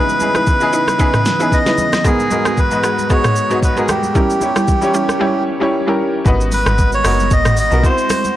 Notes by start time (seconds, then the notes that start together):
Already playing: C#3 E3 B3 D#4 E4 G#4 B4 D#5
0.09 shaker
0.19 C#3 B3 D#4 E4 G#4, high conga, shaker
0.35 D#4 E4 B4, cross-stick, high conga, shaker
0.47 kick, low conga, shaker
0.60 C#3 B3 D#4 E4 G#4, shaker
0.73 D#4 E4 B4, shaker
0.87 cross-stick, high conga, shaker
0.98 C#3 B3 D#4 E4 G#4 B4, kick, shaker
1.14 cross-stick, mid tom, shaker
1.25 snare, shaker
1.39 C#3 B3 D#4 E4 G#4 B4, shaker
1.52 D#5, kick, shaker
1.65 C#3 B3 D#4 E4 B4, snare, shaker
1.78 high conga, low conga, shaker
1.93 cross-stick, snare, high conga, shaker
2.04 G#2 G#3 B3 D#4 F#4 G#4 A#4, kick, low conga, shaker
2.20 shaker
2.30 G#2 B3 D#4 F#4 A#4, high conga, shaker
2.45 B3 F#4 G#4, cross-stick, high conga, shaker
2.57 B4, kick, low conga, shaker
2.71 G#2 B3 D#4 F#4 B4, shaker
2.83 B3 F#4 G#4, cross-stick, shaker
2.98 high conga, shaker
3.09 G#2 B3 D#4 F#4 G#4 C#5, kick, shaker
3.24 cross-stick, mid tom, shaker
3.36 shaker
3.50 G#2 B3 D#4 F#4 G#4 C#5, shaker
3.63 B4, kick, shaker
3.76 G#2 B3 D#4 F#4 G#4 A#4, shaker
3.88 G4, cross-stick, high conga, low conga, shaker
4.03 high conga, shaker
4.14 G3 C#4 E4 G4 A#4, kick, low conga, shaker
4.30 shaker
4.40 G3 C#4 E4 G4 C#5, high conga, shaker
4.56 G3 C#4 E4 G4, cross-stick, high conga, shaker
4.68 kick, low conga, shaker
4.81 G3 C#4 E4 G4 C#5, shaker
4.94 G3 C#4 E4 G4, shaker
5.08 cross-stick, high conga, shaker
5.19 G3 C#4 E4 G4 C#5
5.60 G3 C#4 E4 G4 C#5
5.86 G3 C#4 E4 G4 A#4
6.25 G#1 G#3 B3 D#4 F#4 B4, kick, low conga, shaker
6.41 shaker
6.52 B4, open hi-hat, high conga, shaker
6.66 G#1, cross-stick, high conga, shaker
6.78 kick, low conga, shaker
6.92 C#5, shaker
7.04 F#1 B3 D#4 F#4 A#4, cross-stick, open hi-hat, shaker
7.19 high conga, shaker
7.31 G#1 D#5, kick, shaker
7.45 cross-stick, mid tom, shaker
7.57 D#5, open hi-hat, shaker
7.71 B1 B3 D#4 F#4 A#4, shaker
7.83 C4 E4 F#4 C5, kick, shaker
7.98 shaker
8.10 cross-stick, open hi-hat, high conga, shaker
8.24 high conga, shaker